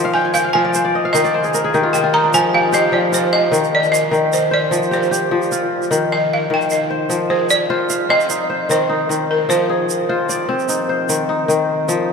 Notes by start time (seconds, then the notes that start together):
Already playing: F3 C5
0.05 F5
0.14 G5 G#5
0.25 G#5
0.34 F5 G5, shaker
0.44 F5
0.53 F3 F5 G#5
0.65 D5
0.74 C5, shaker
0.85 D5
0.95 D#5
1.05 F5
1.13 D#3 D#5, shaker
1.24 D5, shaker
1.34 C5
1.44 G#4, shaker
1.54 A#4, shaker
1.64 G#4
1.74 D#3 G4, shaker
1.83 F4
1.93 G4 G5, shaker
2.04 F4
2.13 D#4 A#5
2.24 D4
2.34 F3 G#5, shaker
2.53 G4 F5
2.72 G4 D#5, shaker
2.92 F3 D5
3.12 F4 C5, shaker
3.33 D#5
3.52 D#3, shaker
3.64 shaker
3.75 D5
3.84 shaker
3.92 D#5, shaker
4.11 D#3, shaker
4.33 C5, shaker
4.51 C5 D5
4.71 F3, shaker
4.83 shaker
4.91 G4 C5, shaker
5.03 shaker
5.11 G4, shaker
5.31 F3
5.42 shaker
5.52 F4, shaker
5.82 shaker
5.91 D#3, shaker
6.12 D#5
6.33 F5
6.50 D#3 G5
6.61 shaker
6.70 D#5, shaker
6.90 C5
7.09 F3, shaker
7.30 G#4 C5
7.50 D5, shaker
7.70 F4 C5
7.90 F5, shaker
8.09 C4 D#5
8.20 shaker
8.30 D#4, shaker
8.50 C5
8.69 D#3 C5, shaker
8.89 D#4
9.09 D#3, shaker
9.31 A#4
9.49 F3 C5, shaker
9.69 G#4
9.90 shaker
10.09 F4 C5
10.29 D5, shaker
10.49 C4
10.59 shaker
10.69 D#4, shaker
10.89 C5
11.09 D#3, shaker
11.29 D#4
11.48 D#3, shaker
11.88 F3, shaker